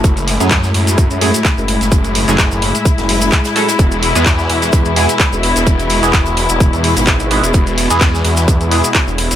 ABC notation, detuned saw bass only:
X:1
M:4/4
L:1/16
Q:"Swing 16ths" 1/4=128
K:Emix
V:1 name="Detuned saw bass" clef=bass
F,,,3 F,,3 F,,3 F,,2 z2 F,,,2 F,,,- | F,,,3 F,,,2 F,,,2 z2 F,,,3 z4 | E,,,3 E,,3 E,,3 E,,2 z2 E,,,2 E,,,- | E,,,3 E,,,2 E,,,2 E,,,2 E,,2 G,,,4 E,,, |
E,,,3 E,,3 E,,3 E,,2 z2 E,,,2 E,,, |]